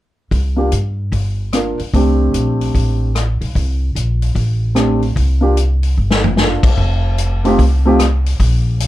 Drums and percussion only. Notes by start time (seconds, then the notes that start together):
0.31 kick, open hi-hat
0.72 closed hi-hat
1.12 kick, open hi-hat
1.53 cross-stick, closed hi-hat
1.79 open hi-hat
1.94 kick, open hi-hat
2.34 closed hi-hat
2.61 open hi-hat
2.75 kick, open hi-hat
3.15 cross-stick, closed hi-hat
3.41 open hi-hat
3.55 kick, open hi-hat
3.96 closed hi-hat
4.22 open hi-hat
4.35 kick, open hi-hat
4.76 cross-stick, closed hi-hat
5.02 open hi-hat
5.16 kick, open hi-hat
5.57 closed hi-hat
5.83 open hi-hat
6.11 snare
6.24 floor tom
6.37 snare
6.63 kick, crash
6.78 kick
7.18 closed hi-hat
7.45 open hi-hat
7.59 kick, open hi-hat
7.99 cross-stick, closed hi-hat
8.26 open hi-hat
8.40 kick, open hi-hat
8.80 closed hi-hat